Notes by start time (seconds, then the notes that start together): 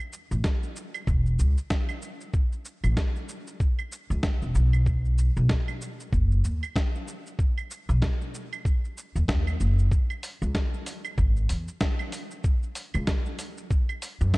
0.00 shaker
0.13 shaker
0.31 A1, shaker
0.44 kick, snare, shaker
0.63 shaker
0.76 shaker
0.94 claves, shaker
1.07 E1, kick, shaker
1.26 shaker
1.39 C#2, shaker
1.58 shaker
1.70 kick, snare, shaker
1.89 claves, shaker
2.02 shaker
2.20 shaker
2.34 kick, shaker
2.52 shaker
2.65 shaker
2.84 A1, claves, shaker
2.97 kick, snare, shaker
3.16 shaker
3.29 shaker
3.47 shaker
3.60 kick, shaker
3.79 claves, shaker
3.92 shaker
4.10 C#2, shaker
4.23 kick, snare, shaker
4.42 E1, shaker
4.55 B1, shaker
4.73 claves, shaker
4.86 kick, shaker
5.05 shaker
5.18 shaker
5.36 B1, shaker
5.49 kick, snare, shaker
5.68 claves, shaker
5.81 shaker
6.00 shaker
6.12 F#1, kick, shaker
6.31 shaker
6.44 D#2, shaker
6.63 claves, shaker
6.76 kick, snare, shaker
6.95 shaker
7.08 shaker
7.26 shaker
7.39 kick, shaker
7.58 claves, shaker
7.71 shaker
7.89 B1, shaker
8.02 kick, snare, shaker
8.21 shaker
8.34 shaker
8.53 claves, shaker
8.65 kick, shaker
8.84 shaker
8.98 shaker
9.15 D#2, shaker
9.28 D#2, kick, snare, shaker
9.47 claves, shaker
9.60 F#1, shaker
9.79 shaker
9.91 kick, shaker
10.10 claves, shaker
10.23 open hi-hat, shaker
10.42 C#2, shaker
10.55 kick, snare, shaker
10.74 shaker
10.86 open hi-hat, shaker
11.05 claves, shaker
11.18 G#1, kick, shaker
11.36 shaker
11.49 E2, open hi-hat, shaker
11.68 shaker
11.81 kick, snare, shaker
11.99 claves, shaker
12.12 open hi-hat, shaker
12.31 shaker
12.44 kick, shaker
12.63 shaker
12.75 open hi-hat, shaker
12.94 C#2, claves, shaker
13.07 kick, snare, shaker
13.26 shaker
13.39 open hi-hat, shaker
13.57 shaker
13.71 kick, shaker
13.89 claves, shaker
14.02 open hi-hat, shaker
14.21 F#2, shaker
14.34 kick, snare, shaker